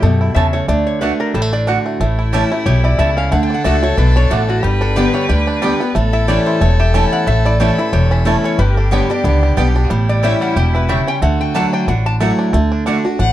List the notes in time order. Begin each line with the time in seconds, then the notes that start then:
Already playing: G4
0.02 F#2 B2 A3 A4
0.21 E4
0.34 E2 C#3 A3 C#4 E4 C#5 E5 A5
0.53 A3 C#5
0.68 D2 D3 A3 D5
0.87 C#5
1.01 D3 A3 D4 F#4 B4 D5 F#5
1.20 D4 A#4
1.34 A1 A2 G3 A4
1.42 A3
1.53 D4 D5
1.67 D3 A3 D4 F#4 D5 F#5
1.86 A3
2.00 A1 A2 A3 E4
2.19 E4
2.33 E3 A3 C#4 E4 G4 C#5 A5
2.52 A3 C#4 E4
2.66 B1 B2 G4 C#5
2.84 E4 D5
2.98 C#2 C#3 A3 E4 C#5 E5 A5
3.17 C#4 F5
3.32 D2 D3 A3 A4 F#5
3.43 G5
3.50 D4
3.54 F#5
3.64 C#2 D3 A3 D4 F#4 D5 E5 F#5
3.83 A3 D4 F#4 C#5
3.97 B1 B2 D4 B4
4.16 D4 C#5
4.30 A1 A2 A3 F#4 A4 D5 F#5
4.49 D4 F#4
4.63 G1 G2 G3 G4 B4
4.81 D4 A4
4.96 D3 G3 B3 G4 B4 D5 G5
5.14 G3 C#5
5.29 D2 D3 G4 D5
5.47 D4
5.62 D3 G3 B3 G4 D5 G5
5.80 B3 G4
5.95 A1 A2 A3 A4
6.13 E4 E5
6.27 E3 A3 C#4 E4 G4 C#5 D5 A5
6.46 E4 C5
6.61 E1 E2 A3 C#5
6.79 G4 E5
6.94 E3 A3 C#4 E4 C#5 G5 A5
7.12 E4 F#5
7.27 A1 A2 A3 E5
7.45 E4 D5
7.60 E3 A3 C#4 E4 G4 C#5 A5
7.78 C#4 E4 B4
7.93 E1 E2 G4 C#5
8.11 C#4 E4
8.25 E3 A3 C#4 E4 A4 C#5 A5
8.44 C#4 C#5
8.58 G1 G2 G3 G4 B4
8.77 D4 A4
8.91 D3 G3 B3 G4 C#5 D5 G5
9.10 B3 D4 G4 D5
9.24 C#2 D3 B3
9.43 G3
9.57 B1 D3 G3 B3 G4 D5 G5
9.75 B3 D4 G4
9.84 F#4
9.90 A1 A2 G3 E4
10.09 D5
10.23 E3 G3 A3 C#4 E4 G4 C#5 E5 G5
10.41 G3 F#5
10.56 E1 B2 G4 G5
10.75 E4 B4
10.89 C#3 G3 A3 E4 C#5 E5 G5
11.07 C#4 G5
11.16 G4
11.22 D2 D3 A3 F#4 F#5
11.41 G5
11.54 F#3 A3 D4 E4 F#4 D5 F#5 A5
11.73 D4 G5
11.87 A1 A2 D4 F#5
12.06 D4 A5
12.20 F#3 A3 E4 F#4 D5 F#5
12.39 D4
12.53 D2 D3 A3
12.72 D4
12.86 D3 A3 D4 F#4 D5 F#5
13.05 D4 F#4
13.19 A1 A2 D4 F#5